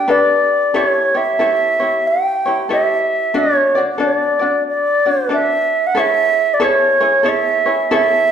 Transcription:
0.00 0.12 G5 loud
0.08 0.73 D4 medium
0.08 0.74 G4 medium
0.08 0.74 A4 medium
0.08 0.73 B4 medium
0.08 0.77 D5 medium
0.74 1.15 E4 medium
0.74 1.14 G4 medium
0.74 1.14 A4 medium
0.74 1.18 C#5 medium
0.74 1.13 C#5 medium
1.14 1.39 E4 soft
1.14 1.39 G4 soft
1.14 1.39 C#5 soft
1.14 2.09 E5 loud
1.39 1.80 E4 medium
1.39 1.79 G4 medium
1.39 1.79 A4 medium
1.39 1.78 C#5 medium
1.80 2.46 E4 soft
1.80 2.45 G4 soft
1.80 2.44 C#5 soft
2.07 2.71 G5 medium
2.46 2.69 E4 soft
2.46 2.69 G4 soft
2.46 2.69 C#5 medium
2.69 3.34 E4 medium
2.69 3.34 G4 medium
2.69 3.34 A4 medium
2.69 3.35 C#5 medium
2.69 3.40 E5 medium
3.34 3.75 D4 medium
3.34 3.76 F#4 medium
3.34 3.75 A4 medium
3.38 3.82 C#5 medium
3.75 3.98 D4 soft
3.75 3.98 F#4 soft
3.75 3.99 D5 medium
3.98 4.41 D4 medium
3.98 4.40 F#4 medium
3.98 4.40 A4 medium
3.98 4.38 D5 medium
4.05 4.63 D5 medium
4.39 5.06 D4 soft
4.39 5.05 F#4 soft
4.39 5.04 D5 soft
4.69 5.28 D5 medium
5.06 5.29 D4 soft
5.06 5.30 F#4 soft
5.06 5.30 D5 soft
5.29 5.95 D4 soft
5.29 5.95 F#4 medium
5.29 5.95 A4 medium
5.29 5.94 D5 medium
5.33 5.88 E5 medium
5.87 6.01 F#5 medium
5.95 6.59 E4 medium
5.95 6.59 G#4 medium
5.95 6.59 A4 medium
5.95 6.60 C#5 medium
5.99 6.55 E5 loud
6.54 6.66 D5 medium
6.60 7.01 E4 medium
6.60 7.00 G#4 medium
6.60 7.00 A4 medium
6.60 6.99 C#5 medium
6.64 7.30 C#5 medium
7.00 7.23 E4 soft
7.00 7.24 G#4 medium
7.00 7.23 C#5 soft
7.23 7.66 E4 medium
7.23 7.66 G#4 medium
7.23 7.65 A4 medium
7.23 7.65 C#5 medium
7.29 7.93 E5 loud
7.66 7.90 E4 soft
7.66 7.90 G#4 soft
7.66 7.91 C#5 soft
7.91 8.32 E4 medium
7.91 8.32 G#4 medium
7.91 8.32 A4 medium
7.91 8.32 C#5 medium
7.95 8.32 E5 loud

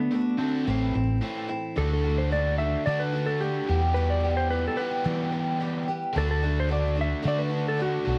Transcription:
0.00 0.11 A3 soft
0.00 0.38 B3 medium
0.00 0.13 D4 soft
0.00 0.12 F#4 medium
0.11 0.39 D3 medium
0.11 0.40 A3 medium
0.11 0.40 D4 medium
0.11 0.39 F#4 medium
0.38 0.65 D3 medium
0.38 1.18 C4 medium
0.38 0.68 D4 soft
0.38 0.67 F#4 soft
0.43 0.67 A3 soft
0.67 0.92 A1 loud
0.67 0.95 A2 medium
0.67 0.95 E3 medium
0.67 0.95 A3 medium
0.67 0.94 C4 medium
0.67 0.93 E4 medium
0.94 1.20 A1 medium
0.94 1.19 A2 medium
0.94 1.20 E3 medium
0.94 1.21 A3 soft
0.94 1.22 C4 soft
0.94 1.22 E4 soft
1.21 1.48 A2 medium
1.21 1.49 E3 medium
1.21 1.50 A3 medium
1.21 1.48 C4 medium
1.21 1.47 E4 medium
1.48 1.75 A2 medium
1.48 1.74 E3 medium
1.48 1.76 A3 soft
1.48 1.77 C4 medium
1.48 1.77 E4 medium
1.76 2.75 D2 medium
1.76 2.04 D3 medium
1.76 2.05 A3 medium
1.76 2.04 D4 medium
1.76 2.03 F#4 medium
1.76 1.92 A4 medium
1.93 2.21 A4 medium
2.04 2.30 A3 soft
2.04 2.31 D4 soft
2.04 2.32 F#4 medium
2.18 2.32 C5 medium
2.31 2.59 D3 medium
2.31 2.59 A3 medium
2.31 2.58 D4 medium
2.31 2.57 F#4 medium
2.31 2.58 D5 medium
2.58 2.85 A3 soft
2.58 2.86 D4 soft
2.58 2.86 F#4 soft
2.58 2.85 E5 medium
2.86 3.14 D3 medium
2.86 3.60 D3 loud
2.86 3.14 A3 medium
2.86 3.14 D4 medium
2.86 3.12 F#4 medium
2.86 3.01 D5 loud
2.99 3.28 B4 medium
3.13 3.40 A3 soft
3.13 3.42 D4 soft
3.13 3.41 F#4 soft
3.26 3.42 A4 medium
3.40 3.69 D3 medium
3.40 3.69 A3 medium
3.40 3.69 D4 medium
3.40 3.68 F#4 medium
3.40 3.80 G4 medium
3.67 4.76 E2 medium
3.67 4.67 E2 medium
3.67 4.76 B2 medium
3.67 3.95 E3 soft
3.67 3.95 G3 soft
3.67 3.95 B3 soft
3.67 3.96 G4 medium
3.94 4.23 E2 medium
3.94 4.24 B2 medium
3.94 4.24 E3 medium
3.94 4.23 G3 medium
3.94 4.23 B3 medium
3.94 4.22 G4 medium
3.94 4.10 B4 medium
4.10 4.36 D5 medium
4.23 4.48 E3 soft
4.23 4.50 G3 soft
4.23 4.51 B3 soft
4.23 4.51 G4 medium
4.37 4.50 C5 medium
4.50 4.78 E3 medium
4.50 4.79 G3 medium
4.50 4.78 B3 medium
4.50 4.78 G4 medium
4.50 4.65 B4 medium
4.68 4.81 A4 medium
4.77 5.87 E2 medium
4.77 5.87 B2 medium
4.77 5.04 G3 soft
4.77 5.05 B3 medium
4.77 5.05 G4 medium
4.77 5.29 B4 medium
4.81 5.04 E3 soft
5.04 5.33 E2 medium
5.04 5.33 B2 medium
5.04 5.33 E3 medium
5.04 6.03 E3 loud
5.04 5.33 G3 medium
5.04 5.32 B3 medium
5.04 5.31 G4 medium
5.32 5.59 E3 soft
5.32 5.59 G3 soft
5.32 5.60 B3 soft
5.32 5.60 G4 medium
5.60 5.88 E3 medium
5.60 5.88 G3 medium
5.60 5.87 B3 medium
5.60 5.87 G4 medium
5.88 6.15 E3 soft
5.88 6.16 G3 medium
5.88 6.16 B3 medium
5.88 6.15 G4 medium
6.15 7.13 D2 loud
6.15 6.43 D3 medium
6.15 6.43 A3 medium
6.15 6.42 D4 medium
6.15 6.41 F#4 medium
6.15 6.30 A4 medium
6.31 6.58 A4 medium
6.42 6.68 A3 soft
6.42 6.69 D4 soft
6.42 6.70 F#4 medium
6.60 6.72 C5 medium
6.69 6.97 D3 medium
6.69 6.97 A3 medium
6.69 6.96 D4 medium
6.69 6.94 F#4 medium
6.69 7.00 D5 medium
6.96 7.22 A3 soft
6.96 7.23 D4 soft
6.96 7.23 F#4 medium
7.01 7.27 E5 medium
7.22 7.51 D3 medium
7.22 7.98 D3 loud
7.22 7.51 A3 medium
7.22 7.50 D4 medium
7.22 7.48 F#4 medium
7.28 7.40 D5 loud
7.38 7.66 B4 medium
7.50 7.77 A3 soft
7.50 7.78 D4 soft
7.50 7.78 F#4 medium
7.68 7.80 A4 medium
7.77 8.06 D3 medium
7.77 8.06 A3 medium
7.77 8.05 D4 medium
7.77 8.04 F#4 medium
7.82 8.19 F#4 medium
8.04 8.19 B1 medium
8.04 8.19 B2 medium
8.04 8.19 F#3 medium
8.04 8.19 A3 soft
8.04 8.19 B3 medium
8.04 8.19 D4 soft
8.04 8.19 F#4 soft

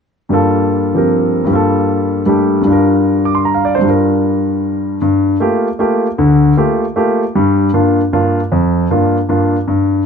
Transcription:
0.29 1.43 G2 soft
0.29 1.46 G3 soft
0.29 1.48 A#3 soft
0.29 1.50 F4 soft
0.34 1.50 A4 soft
0.94 1.48 F3 soft
0.94 1.49 C4 soft
0.94 1.49 G4 soft
0.94 1.50 A#4 soft
1.44 2.60 G2 soft
1.44 2.25 G3 soft
1.50 2.67 A#3 soft
1.50 2.68 F4 soft
1.55 2.70 A4 soft
2.26 2.63 G3 soft
2.26 2.66 A3 soft
2.26 2.66 D4 soft
2.26 2.67 G4 soft
2.62 3.77 G2 soft
2.62 3.80 G3 soft
2.67 3.83 D4 soft
2.67 3.85 F4 soft
2.73 3.87 A#4 soft
3.25 3.37 D6 soft
3.35 3.48 C6 soft
3.45 3.62 A#5 soft
3.55 3.71 F5 soft
3.65 3.77 D5 soft
3.75 4.98 G2 soft
3.75 3.88 C5 soft
3.82 5.00 G3 soft
3.82 5.01 D4 soft
3.87 5.03 F4 soft
3.87 5.04 A#4 soft
5.01 5.35 G2 medium
5.40 5.67 A3 soft
5.40 5.67 A#3 soft
5.40 5.67 F4 soft
5.40 5.67 G4 soft
5.79 6.06 A3 soft
5.79 6.06 A#3 soft
5.79 6.06 F4 soft
5.79 6.06 G4 medium
6.18 6.52 D2 medium
6.18 6.52 D3 medium
6.57 6.84 A3 soft
6.57 6.84 A#3 soft
6.57 6.84 F4 soft
6.57 6.84 G4 soft
6.96 7.22 A3 soft
6.96 7.23 A#3 soft
6.96 7.23 F4 soft
6.96 7.23 G4 medium
7.35 7.69 G2 medium
7.35 7.69 G3 medium
7.74 8.00 G2 soft
7.74 8.00 A#3 soft
7.74 8.00 D4 soft
7.74 8.00 F4 soft
8.13 8.39 G2 soft
8.13 8.39 A#3 soft
8.13 8.39 D4 soft
8.13 8.39 F4 medium
8.52 8.85 F2 medium
8.91 9.17 G2 soft
8.91 9.17 A#3 soft
8.91 9.17 D4 soft
8.91 9.17 F4 soft
9.29 9.55 G2 soft
9.29 9.56 A#3 soft
9.29 9.56 D4 soft
9.29 9.56 F4 soft
9.68 10.01 G2 medium

